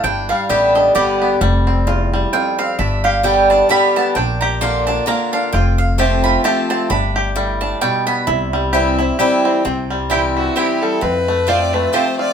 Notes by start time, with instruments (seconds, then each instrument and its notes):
0.04 upright bass G1, steel-string acoustic guitar G2, five-string banjo D4, mandolin G5
0.29 five-string banjo G3, mandolin F5
0.49 upright bass A1, steel-string acoustic guitar D3 G3 B3 G4, five-string banjo G4, mandolin E5
0.75 five-string banjo D4, mandolin D#5
0.95 upright bass G1, steel-string acoustic guitar D3 G3 B3 G4, five-string banjo G4, mandolin D5
1.22 five-string banjo B3
1.41 upright bass F1, steel-string acoustic guitar F2, five-string banjo G3
1.67 five-string banjo C4
1.87 steel-string acoustic guitar E2, five-string banjo F4
2.14 five-string banjo G3
2.33 steel-string acoustic guitar F2, five-string banjo F4, mandolin G5
2.59 five-string banjo C4, mandolin F5
2.79 upright bass G1, steel-string acoustic guitar G2, five-string banjo D4, mandolin E5
3.04 five-string banjo G4, mandolin F5
3.23 steel-string acoustic guitar D3 G3 B3 G4, five-string banjo G3, mandolin G5
3.50 five-string banjo D4, mandolin A5
3.69 steel-string acoustic guitar D3 G3 B3 G4, five-string banjo G3, mandolin B5
3.96 five-string banjo B3, mandolin A5
4.15 upright bass A#1, steel-string acoustic guitar A#2, five-string banjo D4, mandolin G5
4.41 five-string banjo G4, mandolin A#5
4.61 steel-string acoustic guitar D3 A#3 D4 F4, five-string banjo A#3, mandolin C6
4.87 five-string banjo D4, mandolin A5
5.06 steel-string acoustic guitar D3 A#3 D4 F4, five-string banjo A#3, mandolin A#5
5.33 five-string banjo D4, mandolin F5
5.53 upright bass F1, steel-string acoustic guitar F2, five-string banjo F4, mandolin G5
5.78 mandolin F5
5.98 steel-string acoustic guitar F3 A3 C4 F4, five-string banjo G4, mandolin A5
6.24 five-string banjo F4, mandolin B5
6.44 steel-string acoustic guitar F3 A3 C4 F4, five-string banjo G4, mandolin A5
6.70 five-string banjo C4, mandolin A5
6.90 upright bass G1, steel-string acoustic guitar G2, five-string banjo D4, mandolin B5
7.16 five-string banjo G4
7.36 steel-string acoustic guitar A2, five-string banjo G3
7.61 five-string banjo D4, mandolin A5
7.81 steel-string acoustic guitar B2, five-string banjo G3, mandolin G5
8.07 five-string banjo B3, mandolin B5
8.27 upright bass C2, steel-string acoustic guitar C3, five-string banjo E4
8.53 five-string banjo G3
8.73 steel-string acoustic guitar E3 G3 C4 E4, five-string banjo G4
8.99 steel-string acoustic guitar C4 E4, five-string banjo E4
9.19 steel-string acoustic guitar E3 G3 C4 E4, five-string banjo G4
9.45 five-string banjo C4
9.65 upright bass C2, steel-string acoustic guitar C3, five-string banjo C4
9.90 five-string banjo G3
10.10 steel-string acoustic guitar E3 G3 C4 E4, mandolin C4 E4 C5 G5, five-string banjo G4
10.36 five-string banjo E4, fiddle F#4
10.56 steel-string acoustic guitar E3 G3 C4 E4, mandolin C4 E4 C5 G5, five-string banjo C4, fiddle G4
10.81 five-string banjo G3, fiddle A4
11.01 steel-string acoustic guitar F2, upright bass F2, five-string banjo C4, fiddle B4
11.28 five-string banjo A3
11.47 steel-string acoustic guitar F3 A3 C4 F4, mandolin C4 F4 C5 A5, five-string banjo F4, fiddle D5
11.73 five-string banjo A3, fiddle B4
11.93 steel-string acoustic guitar F3 A3 C4 F4, mandolin C4 F4 C5 A5, five-string banjo G4, fiddle C5
12.19 five-string banjo F4, fiddle D5